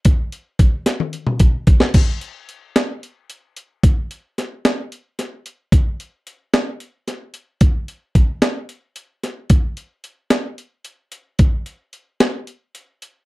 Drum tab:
CC |--------------|x-------------|--------------|--------------|
HH |x-x-x-x-x-x-x-|x-x-x-x-x-x-x-|x-x-x-x-x-x-x-|x-x-x-x-x-x-x-|
SD |------o------o|------o-------|----o-o---o---|------o---o---|
T1 |-------o------|--------------|--------------|--------------|
T2 |---------o----|--------------|--------------|--------------|
BD |o---o-----o-o-|o-------------|o-------------|o-------------|

CC |--------------|--------------|--------------|
HH |x-x-x-x-x-x-x-|x-x-x-x-x-x-x-|x-x-x-x-x-x-x-|
SD |------o-----o-|------o-------|------o-------|
T1 |--------------|--------------|--------------|
T2 |--------------|--------------|--------------|
BD |o---o---------|o-------------|o-------------|